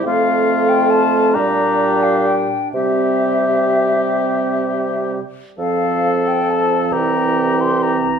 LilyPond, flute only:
\new Staff \with { instrumentName = "Flute" } { \time 6/8 \key f \major \tempo 4. = 44 f''8. g''16 a''8 bes''8. f''16 g''8 | e''2~ e''8 r8 | f''8. g''16 a''8 bes''8. c'''16 bes''8 | }